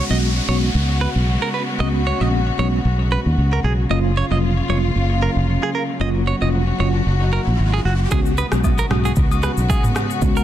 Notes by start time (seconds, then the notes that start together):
Already playing: C#3 G#3 B3 F#4, downlifter
0.10 B1 G#3 B3 C#4 F#4 D#5
0.48 B1 G#3 B3 C#4 F#4 C#5
0.75 C#2
1.01 B4
1.16 B1
1.42 A#4
1.54 B4
1.79 C#2 G#3 B3 C#4 F#4 D#5
2.07 C#5
2.20 A#1 G#3 B3 C#4 F#4 D#5
2.58 B1 G#3 B3 C#4 F#4 C#5
2.85 B1
3.12 B4
3.26 D#2
3.38 C#2
3.53 A#4
3.64 B1 G#4
3.90 F#1 F#3 A#3 C#4 F4 D#5, riser
4.17 C#5
4.31 F1 F#3 A#3 C#4 F4 D#5
4.69 F1 F#3 A#3 C#4 F4 C#5
4.96 F#1
5.22 A#4
5.36 F1
5.63 G#4
5.75 A#4
6.00 F#1 F#3 A#3 C#4 F4 F#4 D#5
6.27 C#5
6.41 F1 F#3 A#3 C#4 F4 D#5
6.79 F#1 F#3 A#3 C#4 F4 C#5
7.06 F#1
7.33 A#4
7.47 A#1
7.59 G#1
7.74 G#4
7.85 F#1 F#4
8.11 C#2 C#3 G#3 B3 C#4 F#4 G#4, kick, shaker
8.26 shaker
8.38 B4, high agogo, shaker
8.52 B1 G#3 B3 C#4 F#4, cross-stick, shaker
8.64 kick, high agogo, low woodblock, shaker
8.78 A#4, shaker
8.90 B1 G#3 B3 C#4 F#4, cross-stick, mid tom, high agogo
9.05 G#4, shaker
9.16 C#2, kick, shaker
9.31 high agogo, shaker
9.43 B4, cross-stick, shaker
9.57 B1, shaker
9.70 G#4, kick, high agogo, low woodblock, shaker
9.83 mid tom, shaker
9.95 cross-stick, high agogo, shaker
10.11 shaker
10.22 C#2 G#3 B3 C#4 F#4, kick, shaker
10.37 A#4, shaker